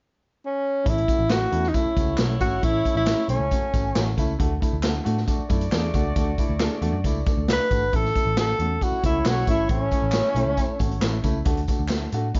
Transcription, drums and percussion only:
0.86 kick, closed hi-hat, tambourine
0.98 closed hi-hat
1.08 kick, closed hi-hat, tambourine
1.30 snare, clap, closed hi-hat, tambourine
1.52 closed hi-hat
1.63 snare
1.74 kick, closed hi-hat, tambourine
1.97 kick, closed hi-hat, tambourine
2.17 snare, clap, closed hi-hat, tambourine
2.41 kick, closed hi-hat, tambourine
2.63 kick, closed hi-hat, tambourine
2.85 kick, closed hi-hat, tambourine
3.06 snare, clap, closed hi-hat, tambourine
3.29 closed hi-hat, tambourine
3.51 kick, closed hi-hat, tambourine
3.74 kick, closed hi-hat, tambourine
3.95 snare, clap, closed hi-hat, tambourine
4.18 kick, closed hi-hat, tambourine
4.40 kick, closed hi-hat
4.62 kick, closed hi-hat, tambourine
4.83 snare, clap, closed hi-hat, tambourine
5.06 closed hi-hat, tambourine
5.17 snare
5.27 kick, closed hi-hat, tambourine
5.49 kick, closed hi-hat, tambourine
5.61 closed hi-hat
5.72 snare, clap, closed hi-hat, tambourine
5.94 kick, closed hi-hat, tambourine
6.16 kick, closed hi-hat, tambourine
6.38 kick, closed hi-hat, tambourine
6.59 snare, clap, closed hi-hat, tambourine
6.82 closed hi-hat, tambourine
7.04 kick, closed hi-hat, tambourine
7.26 kick, closed hi-hat, tambourine
7.48 snare, clap, closed hi-hat, tambourine
7.71 kick, closed hi-hat, tambourine
7.93 kick, closed hi-hat, tambourine
8.05 snare
8.16 kick, closed hi-hat, tambourine
8.37 snare, clap, closed hi-hat, tambourine
8.59 closed hi-hat
8.81 kick, closed hi-hat, tambourine
9.04 kick, closed hi-hat, tambourine
9.25 snare, clap, closed hi-hat, tambourine
9.47 kick, closed hi-hat, tambourine
9.69 kick, closed hi-hat
9.91 kick, closed hi-hat, tambourine
10.12 snare, clap, closed hi-hat, tambourine
10.35 closed hi-hat, tambourine
10.57 kick, closed hi-hat, tambourine
10.79 kick, closed hi-hat, tambourine
10.91 closed hi-hat
11.02 snare, clap, closed hi-hat, tambourine
11.24 kick, closed hi-hat, tambourine
11.45 kick, closed hi-hat, tambourine
11.57 closed hi-hat
11.68 kick, closed hi-hat, tambourine
11.88 snare, clap, closed hi-hat, tambourine
12.12 closed hi-hat, tambourine
12.34 kick, closed hi-hat, tambourine

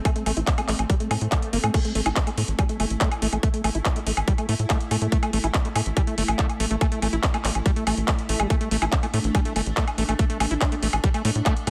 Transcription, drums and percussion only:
0.05 kick, closed hi-hat, high woodblock
0.16 closed hi-hat
0.26 open hi-hat, high woodblock
0.37 closed hi-hat
0.47 kick, clap, closed hi-hat
0.58 closed hi-hat, high woodblock
0.69 clap, open hi-hat
0.79 closed hi-hat, high woodblock
0.90 kick, closed hi-hat
1.00 closed hi-hat
1.11 open hi-hat, high woodblock
1.21 closed hi-hat
1.32 kick, clap, closed hi-hat, high woodblock
1.42 closed hi-hat
1.53 open hi-hat
1.64 closed hi-hat, high woodblock
1.74 kick, closed hi-hat, crash, high woodblock
1.85 closed hi-hat
1.95 open hi-hat
2.06 closed hi-hat, high woodblock
2.16 kick, clap, closed hi-hat
2.27 closed hi-hat, high woodblock
2.38 open hi-hat
2.48 closed hi-hat
2.59 kick, closed hi-hat, high woodblock
2.69 closed hi-hat
2.80 open hi-hat, high woodblock
2.90 closed hi-hat
3.01 kick, clap, closed hi-hat
3.11 closed hi-hat, high woodblock
3.22 open hi-hat
3.33 closed hi-hat, high woodblock
3.43 kick, closed hi-hat
3.54 closed hi-hat
3.64 open hi-hat, high woodblock
3.75 closed hi-hat
3.85 kick, clap, closed hi-hat, high woodblock
3.96 closed hi-hat
4.07 open hi-hat
4.17 closed hi-hat, high woodblock
4.28 kick, closed hi-hat
4.38 closed hi-hat, high woodblock
4.49 open hi-hat
4.59 closed hi-hat
4.70 kick, clap, closed hi-hat, high woodblock
4.80 closed hi-hat
4.91 open hi-hat, high woodblock
5.02 closed hi-hat
5.12 kick, closed hi-hat
5.23 closed hi-hat, high woodblock
5.33 open hi-hat
5.44 closed hi-hat, high woodblock
5.54 kick, clap, closed hi-hat
5.65 closed hi-hat
5.76 open hi-hat, high woodblock
5.86 closed hi-hat
5.97 kick, closed hi-hat, high woodblock
6.07 closed hi-hat
6.18 open hi-hat
6.28 closed hi-hat, high woodblock
6.39 kick, clap, closed hi-hat
6.49 closed hi-hat, high woodblock
6.60 open hi-hat
6.71 closed hi-hat
6.81 kick, closed hi-hat, high woodblock
6.92 closed hi-hat
7.02 open hi-hat, high woodblock
7.13 closed hi-hat
7.23 kick, clap, closed hi-hat
7.34 closed hi-hat, high woodblock
7.45 clap, open hi-hat
7.55 closed hi-hat, high woodblock
7.66 kick, closed hi-hat
7.76 closed hi-hat
7.87 open hi-hat, high woodblock
7.97 closed hi-hat
8.08 kick, clap, closed hi-hat, high woodblock
8.19 closed hi-hat
8.29 open hi-hat
8.40 closed hi-hat, high woodblock
8.50 kick, closed hi-hat, high woodblock
8.61 closed hi-hat
8.71 open hi-hat
8.82 closed hi-hat, high woodblock
8.92 kick, clap, closed hi-hat
9.03 closed hi-hat, high woodblock
9.14 open hi-hat
9.24 closed hi-hat
9.35 kick, closed hi-hat, high woodblock
9.45 closed hi-hat
9.56 open hi-hat, high woodblock
9.66 closed hi-hat
9.77 kick, clap, closed hi-hat
9.88 closed hi-hat, high woodblock
9.98 open hi-hat
10.09 closed hi-hat, high woodblock
10.19 kick, closed hi-hat
10.30 closed hi-hat
10.40 open hi-hat, high woodblock
10.51 closed hi-hat
10.61 kick, clap, closed hi-hat, high woodblock
10.72 closed hi-hat
10.83 open hi-hat
10.93 closed hi-hat, high woodblock
11.04 kick, closed hi-hat
11.14 closed hi-hat, high woodblock
11.25 open hi-hat
11.35 closed hi-hat
11.46 kick, clap, closed hi-hat, high woodblock
11.57 closed hi-hat

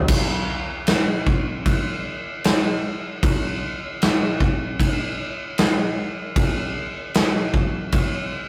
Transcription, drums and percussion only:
0.08 kick, crash
0.87 snare, crash
1.27 kick
1.66 kick, crash
2.44 snare, crash
3.23 kick, crash
4.02 snare, crash
4.40 kick
4.80 kick, crash
5.58 snare, crash
6.36 kick, crash
7.14 snare, crash
7.54 kick
7.92 kick, crash

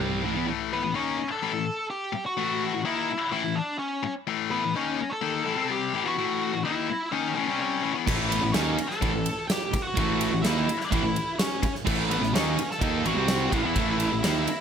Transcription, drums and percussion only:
8.07 kick, crash
8.32 ride
8.54 snare, ride
8.78 ride
8.91 snare
9.02 kick, ride
9.26 ride
9.50 snare, ride
9.73 kick, ride
9.97 kick, ride
10.21 ride
10.44 snare, ride
10.69 ride
10.81 snare
10.92 kick, ride
11.16 ride
11.39 snare, ride
11.63 kick, ride
11.75 snare
11.87 kick, crash
12.11 ride
12.23 snare
12.36 snare, ride
12.59 ride
12.71 snare
12.82 kick, ride
13.06 ride
13.28 snare, ride
13.52 kick, ride
13.76 kick, ride
14.00 ride
14.24 snare, ride
14.47 ride

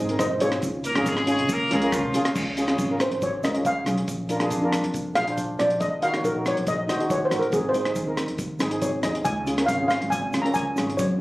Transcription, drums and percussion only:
0.09 closed hi-hat
0.19 kick, cross-stick, closed hi-hat, shaker
0.40 closed hi-hat, shaker
0.52 cross-stick, closed hi-hat
0.62 kick, closed hi-hat, shaker
0.84 closed hi-hat, shaker
0.95 cross-stick, closed hi-hat
1.06 kick, closed hi-hat, shaker
1.17 cross-stick
1.27 closed hi-hat, shaker
1.39 closed hi-hat
1.49 kick, closed hi-hat, shaker
1.71 closed hi-hat
1.82 closed hi-hat
1.92 kick, cross-stick, closed hi-hat, shaker
2.14 closed hi-hat, shaker
2.25 cross-stick, closed hi-hat
2.35 kick, crash, shaker
2.57 closed hi-hat, shaker
2.68 cross-stick, closed hi-hat
2.78 kick, closed hi-hat, shaker
3.00 cross-stick, closed hi-hat, shaker
3.12 closed hi-hat
3.22 kick, closed hi-hat, shaker
3.43 cross-stick, closed hi-hat, shaker
3.55 closed hi-hat
3.65 kick, closed hi-hat, shaker
3.86 cross-stick, closed hi-hat, shaker
3.98 closed hi-hat
4.08 kick, closed hi-hat, shaker
4.29 closed hi-hat, shaker
4.40 cross-stick, closed hi-hat
4.50 kick, closed hi-hat, shaker
4.72 cross-stick, closed hi-hat, shaker
4.84 closed hi-hat
4.94 kick, closed hi-hat, shaker
5.16 cross-stick, closed hi-hat, shaker
5.27 closed hi-hat
5.38 kick, closed hi-hat, shaker
5.59 cross-stick, closed hi-hat, shaker
5.70 closed hi-hat
5.80 kick, closed hi-hat, shaker
6.02 closed hi-hat, shaker
6.14 cross-stick, closed hi-hat
6.24 kick, closed hi-hat, shaker
6.46 cross-stick, closed hi-hat, shaker
6.57 closed hi-hat
6.67 kick, closed hi-hat, shaker
6.89 cross-stick, closed hi-hat, shaker
7.00 closed hi-hat
7.10 kick, closed hi-hat, shaker
7.31 cross-stick, closed hi-hat, shaker
7.42 closed hi-hat
7.52 kick, closed hi-hat, shaker
7.74 closed hi-hat, shaker
7.85 cross-stick, closed hi-hat
7.95 kick, closed hi-hat, shaker
8.17 cross-stick, closed hi-hat, shaker
8.28 closed hi-hat
8.38 kick, closed hi-hat, shaker
8.60 cross-stick, closed hi-hat, shaker
8.71 closed hi-hat
8.82 kick, closed hi-hat, shaker
9.03 cross-stick, closed hi-hat, shaker
9.15 closed hi-hat
9.25 kick, closed hi-hat, shaker
9.47 closed hi-hat, shaker
9.58 cross-stick, closed hi-hat
9.68 kick, closed hi-hat, shaker
9.90 cross-stick, closed hi-hat, shaker
10.02 closed hi-hat
10.12 kick, closed hi-hat, shaker
10.33 cross-stick, closed hi-hat, shaker
10.46 closed hi-hat
10.54 kick, closed hi-hat, shaker
10.77 cross-stick, closed hi-hat, shaker
10.90 closed hi-hat
10.99 kick, closed hi-hat, shaker

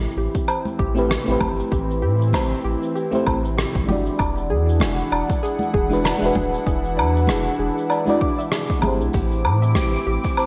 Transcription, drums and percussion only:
0.05 cabasa
0.35 kick, cabasa
0.48 cabasa, low woodblock
0.65 high conga, cabasa
0.79 kick
0.97 cabasa
1.11 cross-stick, cabasa
1.29 cabasa
1.41 kick, high conga, low conga, low woodblock
1.60 cabasa
1.72 kick, cabasa
1.91 cabasa
2.21 cabasa
2.33 cross-stick, high conga, cabasa, low woodblock
2.52 cabasa
2.83 cabasa
2.96 cabasa
3.13 high conga, cabasa
3.26 kick, low woodblock
3.45 cabasa
3.58 cross-stick, cabasa
3.75 kick, cabasa
3.89 high conga, low conga
4.06 cabasa
4.19 kick, cabasa, low woodblock
4.37 cabasa
4.69 cabasa
4.80 cross-stick, high conga, cabasa
5.00 cabasa
5.12 low woodblock
5.30 kick, cabasa
5.45 cabasa
5.59 high conga, cabasa
5.74 kick
5.93 cabasa
6.05 cross-stick, cabasa, low woodblock
6.24 cabasa
6.35 kick, high conga, low conga
6.54 cabasa
6.67 kick, cabasa
6.85 cabasa
6.99 low woodblock
7.16 cabasa
7.27 cross-stick, high conga, cabasa
7.48 cabasa
7.78 cabasa
7.90 cabasa, low woodblock
8.07 high conga, cabasa
8.21 kick
8.40 cabasa
8.52 cross-stick, cabasa
8.70 kick, cabasa
8.82 high conga, low conga, low woodblock
9.01 cabasa
9.13 kick, open hi-hat, cabasa
9.31 open hi-hat, cabasa
9.45 low woodblock
9.63 cabasa
9.75 cross-stick, open hi-hat, high conga, cabasa
9.93 open hi-hat, cabasa
10.24 kick, open hi-hat, cabasa
10.37 open hi-hat, cabasa, low woodblock

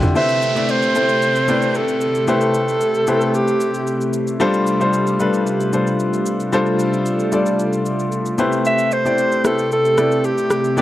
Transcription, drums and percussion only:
0.03 shaker
0.15 shaker
0.29 shaker
0.42 shaker
0.56 shaker
0.68 shaker
0.82 shaker
0.95 shaker
1.09 shaker
1.22 shaker
1.36 shaker
1.48 shaker
1.62 shaker
1.75 shaker
1.88 shaker
2.01 shaker
2.15 shaker
2.28 shaker
2.41 shaker
2.54 shaker
2.69 shaker
2.81 shaker
2.95 shaker
3.07 shaker
3.21 shaker
3.34 shaker
3.48 shaker
3.60 shaker
3.74 shaker
3.87 shaker
4.01 shaker
4.13 shaker
4.27 shaker
4.40 shaker
4.54 shaker
4.67 shaker
4.81 shaker
4.93 shaker
5.07 shaker
5.20 shaker
5.34 shaker
5.47 shaker
5.60 shaker
5.73 shaker
5.87 shaker
5.99 shaker
6.13 shaker
6.26 shaker
6.40 shaker
6.53 shaker
6.66 shaker
6.79 shaker
6.93 shaker
7.06 shaker
7.19 shaker
7.32 shaker
7.46 shaker
7.59 shaker
7.73 shaker
7.85 shaker
7.99 shaker
8.12 shaker
8.26 shaker
8.38 shaker
8.52 shaker
8.65 shaker
8.78 shaker
8.91 shaker
9.06 shaker
9.18 shaker
9.32 shaker
9.44 cross-stick, shaker
9.58 shaker
9.72 shaker
9.85 shaker
9.98 cross-stick, shaker
10.12 shaker
10.24 shaker
10.38 shaker
10.50 cross-stick, shaker
10.64 shaker
10.77 shaker

